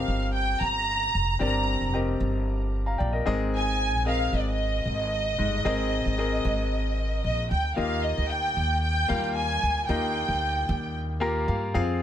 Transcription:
Already playing: G2 C4 G4 A#4 D#5 F5
0.08 G1
0.34 G5
0.61 G1 A#5
1.15 F1
1.39 G1 G2 C4 G4 A#4 D5
1.44 A#5
1.81 F1
1.94 C4 G4 A#4 D#5
2.20 G1
2.86 F5 A#5
2.98 A#1 D5 G5
3.13 A#4 D#5
3.26 G#1 G#2 C4 G#4 A#4 D#5
3.56 G#5
3.93 A#1
4.05 C4 G#4 A#4 D#5 F5
4.33 G#1 D#5
4.39 D5
4.49 D#5
4.85 G#1
5.38 G1 G#2
5.65 G#1 C4 G#4 A#4 D#5
6.06 G#1
6.18 C4 G#4 A#4 D#5
6.45 G#1
7.24 A#1 D#5
7.51 D2 G5
7.76 D#2 A#3 D#4 F4 G4 D#5 F5
8.04 D#5
8.18 D2
8.29 G5
8.57 D#2
8.83 G5
9.08 D#2 G3 A#3 F4 F5
9.36 G#5
9.63 D2
9.89 D#2 A#3 D#4 F4 G4 D#5 G5
10.28 D2
10.69 D#2
11.20 A#3 F4 G4 A#4 A#5
11.48 G2 F5
11.74 F2 C4 F4 G#4 F5

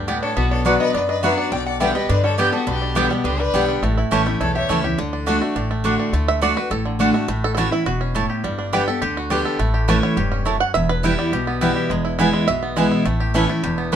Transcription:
Already playing: D2 G3 D4
0.08 A2 B3 G4 D5 G5
0.22 D4 A4 C#5
0.37 B1 B2 B3 F#4 B4
0.51 D4 A4 C#5
0.65 F#3 B3 D4 F#4 B4 D5 F#5
0.80 B3 B4 D#5
0.94 F#2 D4 B4 D5
1.09 D4 B4 D#5
1.23 F#3 B3 D4 F#4 B4 D5 E5 F#5
1.37 D4 D5 F#5
1.52 B1 B2 D3 D5 G5
1.66 D5 F#5
1.80 D3 G3 B3 G4 B4 D5 E5 G5
1.95 G3 B3 G4 B4 D#5
2.09 G2 D3 D4 B4 D5
2.23 G3 A4 C#5
2.38 D3 G3 B3 G4 B4 D5 G5
2.52 B3 D4 F#4 G4 A4
2.67 B1 B2 D3 G4 B4
2.82 D4
2.95 D3 G3 B3 G4 D5 G5
3.10 G3 B3 G4
3.24 C#2 D3 D4 G4 B4
3.39 G3 B4 D5
3.53 B1 D3 G3 B3 G4 D5 G5
3.69 D4
3.82 A1 A2 A3
3.98 E4
4.11 A1 E3 A3 C#4 E4 G4 C#5 A5
4.26 A3 C#4 E4
4.40 B1 E2 E4 A4 C#5
4.55 G4 C#5 E5
4.69 C#2 E3 A3 C#4 E4 C#5 A5
4.84 C#4 E4 G4
4.98 D2 D3
5.13 D4
5.26 D3 A3 D4 F#4 D5 F#5
5.41 A3 D4 F#4
5.56 A1 A2 D4
5.71 A3
5.84 D3 A3 D4 F#4 D5 F#5
5.99 D4
6.13 D2 D3 A3
6.28 E5
6.41 D3 A3 D4 F#4 D5 F#5
6.56 D4 F#4 B4
6.70 A1 A2 A4
6.85 D3
6.99 D3 A3 D4 F#4 D5 F#5
7.14 A3 D4 F#4
7.28 A1 A2 A3
7.44 A4
7.55 E3 A3 C#4 E4 F#4 A4 C#5 A5
7.59 E4
7.71 C#4 E4
7.86 E1 B2 F#4
8.01 C#4
8.15 A2 A3 E4 C#5 A5
8.30 G4
8.44 G1 G2 G3
8.59 D4
8.73 D3 G3 B3 G4 B4 D5 G5
8.88 B3 G4 A4
9.02 D2 D3 G4
9.17 F#4
9.30 D3 G3 B3 D4 G4 D5 G5
9.45 A4
9.59 A1 A2 A3
9.74 G4
9.88 E3 A3 C#4 E4 B4 C#5 A5
10.03 C#5
10.17 E1 G2 G4
10.32 C#4
10.45 F#2 A3 E4 C#5 A5
10.60 F#5
10.74 E1 E2 E5
10.89 B4
11.03 E3 G3 B3 E4 B4 G5
11.19 G3
11.32 B1 B2 G4
11.47 B3
11.61 E3 G3 B3 E4 B4 G5
11.76 G4
11.90 E1 E2 G#3
12.05 E4
12.19 E3 G#3 B3 E4 B4 G#5
12.33 G#3
12.47 B1 B2 E5
12.63 B3
12.76 E3 G#3 B3 E4 B4 G#5
12.92 E4
13.05 A1 A2 A3
13.20 G4
13.34 E3 B3 C#4 E4 A4 E5 B5
13.49 A3 C#4 E4
13.63 E1 E2 G4
13.78 B3
13.92 E3 C#4

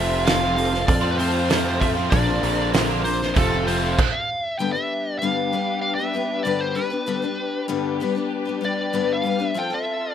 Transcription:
Already playing: F1 F2 C3 F3 A3 C4 F4 A4 C5 E5
0.25 F2 C3 F3 A3 C4 F4 A4 F5, snare, open hi-hat
0.40 F3 A3 C4 F4
0.56 F3 C4 F4 F5, muted overdriven electric guitar stroke, open hi-hat
0.60 A4
0.74 snare
0.87 F2 D5, kick, open hi-hat
1.01 F3 A3 C4 F4 A4
1.06 C4
1.11 B4
1.18 F3 A3 C4 F4 A4 C5, open hi-hat
1.48 F2 C3 F3 A3 C4 F4 A4, snare, open hi-hat
1.64 F3 A3 C4 F4
1.79 F3 A3 C4 F4 A4 E5, kick, open hi-hat
1.95 F3 A3 C4 F4 A4
2.10 A#1 A#2 D3 F3 A#3 C4 D4 F4 A#4 C5 D5, kick, open hi-hat
2.26 F3 C4 D4 A#4
2.41 A#1 D3 A#3 D4 F4, open hi-hat
2.71 A#2 D3 F3 A#3 C4 D4 F4, snare, open hi-hat
2.76 A#4
2.87 A#3 D4 F4
3.03 F3 C4 D4 A#4 C5, muted overdriven electric guitar stroke, open hi-hat
3.22 snare
3.34 F1 F2 C3 F3 A3 C4 F4 A4 C5, kick, open hi-hat
3.49 F3 A3 C4 F4 A4
3.54 C4
3.65 F3 A3 C4 F4 C5, open hi-hat
3.70 A4
3.99 kick, crash
4.12 F5
4.59 G2 D3 G3 B3 D4 G4 B4 G5
4.73 D4 B4 E5
4.77 G3 B3
5.19 G2 D3 G3 F5
5.23 B3 D4 B4
5.53 G3 B3 D4 B4
5.82 F5
5.95 B4 E5
6.00 G3 B3 D4
6.14 G3 B3 D4 B4
6.43 G2 D3 G3 B3 D4 B4 D5
6.61 C5
6.75 G3 B3 D4 B4
6.90 G3 B3 D4 B4
7.06 G2 D3 G3 B3 D4 G4 B4
7.22 G3 B3 D4 B4
7.68 G2 D3 G3 B3 D4 B4
8.00 G3 B3 D4 B4
8.15 G3 B3 D4 B4
8.45 G3 B3 D4 B4
8.61 G3 B3 D4 B4
8.65 D5
8.93 G2 D3 G3 B3 D4 B4
9.13 F5
9.23 G3 B3 D4 B4
9.39 G3 B3 D4 B4
9.47 E5
9.54 F3 C4 F4 A4 C5 G5
9.70 C4 F4 A4 E5

